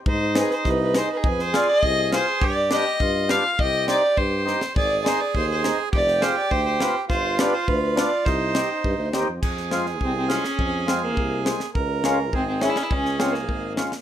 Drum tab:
CC |--------|--------|--------|--------|
SD |--ooo-o-|-oo---o-|--o---o-|--o---oo|
BD |o---o---|o---o---|o---o---|o---o---|

CC |--------|--------|--------|--------|
SD |--o---o-|-oo---o-|o-o---o-|o-o---o-|
BD |o---o---|o---o---|o---o---|o---o---|

CC |x-------|--------|--------|--------|
SD |-ooo--oo|--o---oo|--o---oo|-ooo--oo|
BD |o---o---|o---o---|o---o---|o---o---|